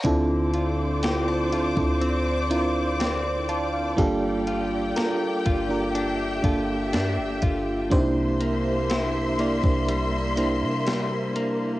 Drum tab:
HH |x-x-x-x-x-x-x-x-|x-x-x-x-x-x-x-x-|x-x-x-x-x-x-x-x-|
SD |----o-------o---|----o-------o---|----o-------o---|
BD |o------o--------|o-----o---o---o-|o------o--------|